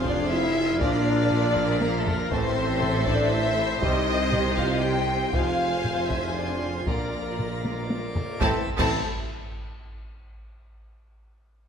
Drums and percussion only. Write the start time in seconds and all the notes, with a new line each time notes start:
0.06 taiko
0.81 taiko
1.32 taiko low-mid
1.56 taiko low-mid
1.81 taiko high
2.07 taiko low
2.32 taiko
2.82 taiko low-mid
3.07 taiko
3.82 taiko
4.32 taiko low-mid
4.58 taiko
5.33 taiko
5.84 taiko low-mid
6.10 taiko
6.87 taiko
7.39 taiko low-mid
7.65 taiko high
7.90 taiko high
8.16 taiko low
8.41 concert bass drum, snare, taiko
8.79 concert bass drum, taiko, crash